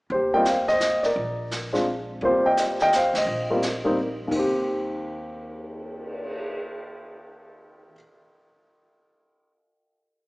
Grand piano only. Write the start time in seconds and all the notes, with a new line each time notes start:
0.12 G4 C5
0.34 G3 A#3 C4 F4 D#5 G5
0.46 C5 F5
0.68 C5 D#5
1.03 A#4 D5
1.73 G#3 C4 D4 F4
2.22 G3 A#3 C4 F4 G4 C5
2.46 D#5 G5
2.59 C5 D#5
2.82 D#5 G5
2.96 C5 F5
3.18 C5 D#5
3.50 G3 A#3 C4 F4
3.84 G3 A#3 C4 D#4
4.28 D#2 D#3
4.35 C4 G4